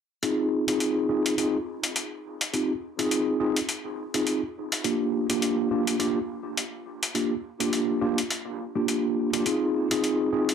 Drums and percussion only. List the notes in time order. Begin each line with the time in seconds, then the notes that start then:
0.23 closed hi-hat
0.68 closed hi-hat
0.80 closed hi-hat
1.26 closed hi-hat
1.38 closed hi-hat
1.84 closed hi-hat
1.96 closed hi-hat
2.41 closed hi-hat
2.54 closed hi-hat
2.99 closed hi-hat
3.11 closed hi-hat
3.56 closed hi-hat
3.69 closed hi-hat
4.14 closed hi-hat
4.27 closed hi-hat
4.72 closed hi-hat
4.84 closed hi-hat
5.30 closed hi-hat
5.42 closed hi-hat
5.87 closed hi-hat
6.00 closed hi-hat
6.57 closed hi-hat
7.03 closed hi-hat
7.15 closed hi-hat
7.60 closed hi-hat
7.73 closed hi-hat
8.18 closed hi-hat
8.30 closed hi-hat
8.88 closed hi-hat
9.34 closed hi-hat
9.46 closed hi-hat
9.91 closed hi-hat
10.04 closed hi-hat
10.49 closed hi-hat